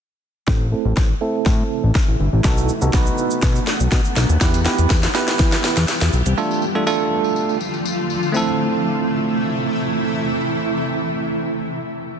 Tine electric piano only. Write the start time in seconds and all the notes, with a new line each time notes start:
0.47 A3 C4 E4 A4
0.72 A3 C4 E4 A4
1.21 A3 C4 E4 A4
2.44 B3 D#4 F#4 A4
2.82 B3 D#4 F#4 A4
2.93 B3 D#4 F#4 B4
4.41 B3 E4 G4 B4
4.65 B3 E4 G4 B4
5.14 B3 E4 G4 B4
6.37 A3 D4 F4 A4
6.75 A3 D4 F4 A4
6.87 A3 D4 F4 A4
8.32 A3 C4 E4
8.37 A4